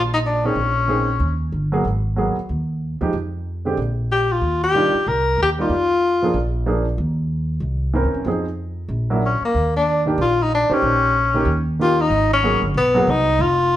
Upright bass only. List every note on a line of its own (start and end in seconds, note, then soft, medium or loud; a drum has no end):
0.00 0.52 A#1 medium
0.55 1.17 A#1 medium
1.20 1.50 D#2 medium
1.52 1.82 G1 medium
1.85 2.33 G#1 medium
2.36 muted upright bass stroke soft
2.49 2.97 D#2 medium
3.01 3.12 E2 medium
3.13 3.74 F2 medium
3.77 4.38 A#1 medium
4.41 4.90 D#2 medium
4.94 muted upright bass stroke soft
5.07 5.36 C2 medium
5.37 5.67 D#2 medium
5.69 6.31 F2 medium
6.34 6.95 A#1 medium
6.98 7.59 D#2 medium
7.60 8.01 C2 medium
8.04 8.14 E2 medium
8.14 8.24 F#2 medium
8.25 8.86 F2 medium
8.89 9.38 A#1 medium
9.41 muted upright bass stroke soft
9.55 10.16 D#2 medium
10.18 10.66 A#1 medium
10.70 muted upright bass stroke soft
10.82 11.43 A#1 medium
11.45 12.07 D#2 medium
12.10 12.59 G#1 medium
12.62 12.74 G1 medium
12.74 13.05 B1 medium
13.07 13.37 C2 medium
13.39 13.77 F1 medium